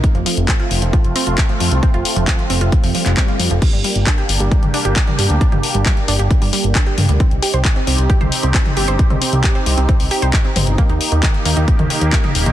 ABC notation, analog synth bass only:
X:1
M:4/4
L:1/16
Q:1/4=134
K:Cdor
V:1 name="Analog synth bass" clef=bass
z F,,, z F,,, z2 F,,, F,,, z F,,, z F,,, z2 F,, C,, | z F,,, z F,,, z2 F,,, F,,, z F,,, z F,,, z2 F,, F,,, | z G,,, z G,,, z2 G,,, G,,, z G,,, z G,,, z2 G,, D,, | z G,,, z G,,, z2 G,,, G,,, z G,,, z G,,, z2 G,, D,, |
z C,, z C,, z2 C,, C,, z C,, z C,, z2 G,,, G,,, | z C,, z C,, z2 C,, C,, z C,, z C,, z2 G,,, G,,, | z E,, z E,, z2 E,, E,, z E,, z E,, z2 E,,, B,,, |]